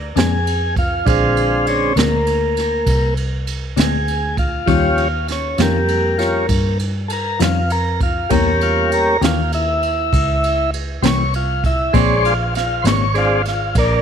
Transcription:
Already playing: D2
0.16 F2 A#2 G#3 C4 D4 G#4, snare, ride
0.47 ride
0.76 F4, kick, ride
1.06 A#1 D3 G#3 C4 F4, kick, ride
1.37 ride
1.67 C#4, ride
1.96 D2 A#2 G#3 A#3 C4 D4, snare, ride
2.27 ride
2.57 snare, ride
2.86 C2, kick, ride
3.17 ride
3.47 ride
3.76 D2 A#2 G#3 C4 D4 G#4, snare, ride
4.08 ride
4.37 F4, kick, ride
4.66 D#2 D#3 F3 G3 C#4 F4, kick, ride
4.98 ride
5.28 C#4, snare, ride
5.58 F2 D#3 G3 C#4 F4, snare, ride
5.62 A#3
5.88 ride
6.18 F3 G3 C#4, snare, ride
6.49 G2, kick, ride
6.79 ride
7.08 A4, ride
7.13 A#4
7.39 F2 D#3 G3 C#4 F4, snare, ride
7.44 F4
7.70 A#4, ride
8.00 F4, kick, ride
8.29 E2 E3 G3 A#3 C#4 G4 A#4, kick, ride
8.61 F4, ride
8.92 A#4, ride
9.21 D#2 E3 A#3 C#4 F4 G4, snare, ride
9.52 E4, ride
9.83 ride
10.13 C#2, kick, ride
10.44 ride
10.74 ride
11.02 C2 E3 A#3 C#4 G4 C5 C#5, snare, ride
11.34 F4, ride
11.64 E4, kick, ride
11.93 A#1 A#2 G#3 C4 D4 C5 C#5, kick, ride
12.25 F4, ride
12.55 F4, snare, ride
12.82 G#1 D4 C5, ride
12.86 A#2 G#3 C4 C#5, snare
13.14 G#3 C4 D4 F4, ride
13.45 F4, snare, ride
13.75 A#1 A#3 D4, kick, ride

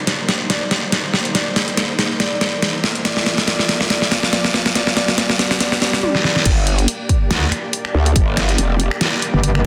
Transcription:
Already playing: A#3 D#4 C5 D5, riser
0.07 snare, closed hi-hat
0.29 snare, closed hi-hat
0.50 D5, snare, closed hi-hat
0.71 snare, closed hi-hat
0.92 snare, closed hi-hat
1.14 snare
1.25 closed hi-hat
1.35 D5, snare, closed hi-hat
1.56 snare, closed hi-hat
1.68 closed hi-hat
1.77 snare, closed hi-hat
1.99 snare, closed hi-hat
2.20 D5, snare, closed hi-hat
2.41 snare, closed hi-hat
2.62 snare, closed hi-hat
2.84 snare
2.95 closed hi-hat
3.05 F4 D5, snare, closed hi-hat
3.17 snare
3.26 snare, closed hi-hat
3.38 snare, closed hi-hat
3.48 D5, snare, closed hi-hat
3.59 snare
3.69 snare, closed hi-hat
3.81 snare
3.90 D5, snare, closed hi-hat
4.02 snare
4.12 snare, closed hi-hat
4.23 snare
4.33 D5, snare, closed hi-hat
4.45 snare
4.54 snare
4.66 snare, closed hi-hat
4.75 D5, snare, closed hi-hat
4.87 snare
4.97 D5, snare, closed hi-hat
5.08 snare, closed hi-hat
5.18 D5, snare, closed hi-hat
5.30 snare
5.39 D5, snare, closed hi-hat
5.51 snare
5.60 D5, snare, closed hi-hat, swell
5.72 snare
5.82 D5, snare, closed hi-hat
5.93 snare
6.03 D5, high tom
6.15 snare
6.24 D5, snare
6.36 snare
6.45 G1 A#3 G4 D5, kick, closed hi-hat, crash
6.67 closed hi-hat
6.78 closed hi-hat
6.88 closed hi-hat
7.09 kick, closed hi-hat
7.31 D2, finger snap, snare, closed hi-hat
7.52 finger snap, closed hi-hat
7.73 closed hi-hat
7.85 finger snap
7.94 D2
8.06 closed hi-hat
8.16 G1, kick, closed hi-hat
8.37 finger snap, snare, closed hi-hat
8.49 closed hi-hat
8.58 F1, closed hi-hat
8.80 closed hi-hat
8.91 finger snap
9.01 snare, closed hi-hat
9.22 closed hi-hat
9.34 G1
9.44 closed hi-hat
9.55 finger snap

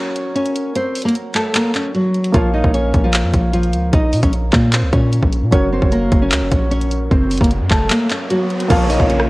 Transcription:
Already playing: F#3 C#4 F#4 A#4 C#5
0.16 closed hi-hat
0.35 C#4 C#5, closed hi-hat
0.46 closed hi-hat
0.56 closed hi-hat
0.75 C4 C5, closed hi-hat
0.95 closed hi-hat, open hi-hat
1.02 A#3 A#4, closed hi-hat
1.08 closed hi-hat
1.15 closed hi-hat
1.35 A3 A4, clap
1.55 A#3 A#4, clap, closed hi-hat
1.75 C#4 C#5, clap, closed hi-hat
1.94 F#3 F#4, closed hi-hat
2.14 closed hi-hat
2.24 closed hi-hat
2.32 A#1 F3 A#3 F4 A#4 C#5 F5, kick, closed hi-hat
2.54 D#4 D#5
2.64 A#1, kick
2.74 C#4 C#5, closed hi-hat
2.94 A#1, kick, closed hi-hat
3.04 F3 F4
3.14 clap, closed hi-hat
3.24 F2
3.34 A#1, kick, closed hi-hat
3.53 F3 F4, closed hi-hat
3.63 closed hi-hat
3.73 C#2, closed hi-hat
3.93 A#1 D#4 D#5, kick, closed hi-hat
4.13 A#2, closed hi-hat, open hi-hat
4.23 A#1 C#4 C#5, kick, closed hi-hat
4.33 closed hi-hat
4.52 A#2 A#3 A#4, kick, clap
4.73 C4 C5, clap, closed hi-hat
4.83 C#2
4.92 A#2 C#4 C#5, kick, closed hi-hat
5.12 closed hi-hat
5.22 A#1, kick
5.32 closed hi-hat
5.42 A#2
5.51 F#1 F#3 C#4 F#4 A#4 C#5, kick, closed hi-hat, riser
5.72 C4 C5
5.82 F#1, kick
5.92 A#3 A#4, closed hi-hat
6.12 F#1, kick, closed hi-hat
6.22 C#4 C#5
6.32 C#2, clap, closed hi-hat
6.42 F#1
6.52 A#1, kick, closed hi-hat
6.71 C#4 C#5, closed hi-hat
6.81 closed hi-hat
6.91 closed hi-hat
7.11 F#1 C4 C5, kick, closed hi-hat
7.31 closed hi-hat, open hi-hat
7.38 F#1 A#3 A#4, kick, closed hi-hat
7.44 closed hi-hat
7.51 closed hi-hat
7.61 F#2
7.70 F#1 A3 A4, kick, clap
7.90 A#3 A#4, clap, closed hi-hat
8.10 C#4 C#5, clap, closed hi-hat
8.30 F#3 F#4, closed hi-hat
8.50 closed hi-hat
8.60 closed hi-hat
8.68 A#1 C#3 F3 A#3 F4 A#4 C#5 F5, kick, closed hi-hat, crash, downlifter
8.89 D#4 D#5, open hi-hat
9.00 A#1, kick
9.10 C#4 C#5, closed hi-hat
9.20 cross-stick

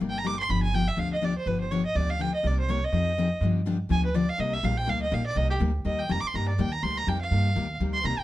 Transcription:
0.00 G1 C3 G3 A#3 D#4 G4
0.09 G5
0.18 A#5
0.24 C3 G3 A#3 D#4 G4 D6
0.39 C6
0.49 G1 D3 F3 B3 D4 G4 B5
0.63 G#5
0.73 D3 F3 B3 D4 G4 G5
0.88 E5
0.96 D2 D3 F3 B3 D4 G4 F5
1.13 D#5
1.21 D3 F3 B3 D4 G4 D5
1.38 C5
1.46 G1 D3 F3 B3 D4 G4 B4
1.60 C5
1.71 D3 F3 B3 D4 G4 C#5
1.85 D#5
1.95 D2 D3 F3 B3 D4 G4 D5
2.10 F5
2.19 D3 F3 B3 D4 G4 G5
2.34 D#5
2.43 C2 C3 G3 A#3 D#4 G4 D5
2.59 C5
2.68 C3 G3 A#3 D#4 G4 C#5
2.84 D#5
2.92 F2 F3 C4 D#4 G#4
3.18 F3 C4 D#4 G#4
3.41 G2 D3 F3 B3 D4 G4
3.66 D3 F3 B3 D4 G4
3.89 D2 D3 F3 B3 D4 G4 G#5
4.05 B4
4.14 D3 F3 B3 D4 G4 D5
4.29 F5
4.38 C2 C3 G3 A#3 D#4 G4 D#5
4.53 E5
4.63 A#1 C3 G3 A#3 D#4 G4 F5
4.77 G5
4.86 D2 C3 G3 A#3 D#4 G4 F5
5.02 D#5
5.11 A#1 C3 G3 A#3 D#4 G4 F5
5.26 D5
5.35 C2 C3 G3 A#3 D#4 G4 D#5
5.50 G4
5.59 D2 C3 G3 A#3 D#4 G4
5.85 D#2 C3 G3 A#3 D#4 G4 D#5
5.99 G5
6.09 F2 C3 G3 A#3 D#4 G4 A#5
6.20 D6, muted upright bass stroke
6.27 C6
6.34 G2 C3 G3 A#3 D#4 G4 A#5
6.48 D5
6.58 D#2 C3 G3 A#3 D#4 G4 G5
6.72 A#5
6.83 D2 C3 G3 A#3 D#4 G4 C6
6.97 A#5
7.07 F2 C3 G3 A#3 D#4 G4 G5
7.21 F5
7.31 G2 C3 G3 A#3 D#4 G4
7.55 D#2 C3 G3 A#3 D#4 G4
7.80 D2 C3 G3 A#3 D#4 G4
7.94 C6
8.03 C2 C3 G3 A#3 D#4 G4 A#5
8.18 G5, muted upright bass stroke

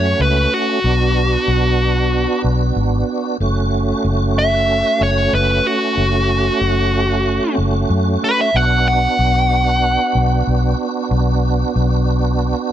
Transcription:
Already playing: F#2 A3 C#4 F#4 C#5
0.20 C#2 B4
0.54 F#4
0.84 B1 B3 D4 F#4
1.48 B1
2.44 B1
2.76 G#1
3.40 F#1 A3 C#4 F#4
4.04 F#1
4.39 E5
5.01 F#1 C#5
5.33 F#1 B4
5.67 F#4
5.97 F#1
6.61 F#1
7.58 F#1
7.90 F#2
8.24 B4
8.41 E5
8.54 B1 B3 D4 F#4 F#5
8.88 F#5
9.19 B1
10.15 B1
10.47 B1
11.11 B1
11.76 B1

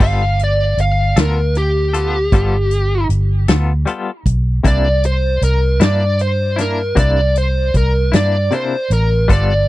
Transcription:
0.00 G1 G3 B3 F4 A4 F5, kick, crash
0.39 closed hi-hat
0.44 D5
0.77 G1 F5, closed hi-hat
1.16 D2 B3 F4 A4 A#4, snare, closed hi-hat
1.55 G4, closed hi-hat
1.93 B3 F4 A4, closed hi-hat
2.32 G1 G3 B3 F4 A4, kick, closed hi-hat
2.71 closed hi-hat
3.09 G1, closed hi-hat
3.48 D2 B3 F4 A4, snare, closed hi-hat
3.86 G3 B3 F4 A4, closed hi-hat
4.26 B1, kick, closed hi-hat
4.64 C2 C3 A#3 D4 E4 D5, kick, closed hi-hat
5.04 C5, closed hi-hat
5.42 C2 A#4, closed hi-hat
5.80 G2 A#3 D4 E4 D5, snare, closed hi-hat
6.19 C5, closed hi-hat
6.56 A#3 D4 E4, snare, closed hi-hat
6.61 A#4
6.95 C2 C3 A#3 D4 E4, kick, closed hi-hat
6.99 D5
7.36 C5, closed hi-hat
7.74 C2 A#4, kick, closed hi-hat
8.12 G2 A#3 D4 E4 D5, snare, closed hi-hat
8.51 C3 A#3 D4 E4 C5, closed hi-hat
8.90 A1 A#4, closed hi-hat
9.28 G1 G3 B3 F4 A4, kick, closed hi-hat
9.33 D5

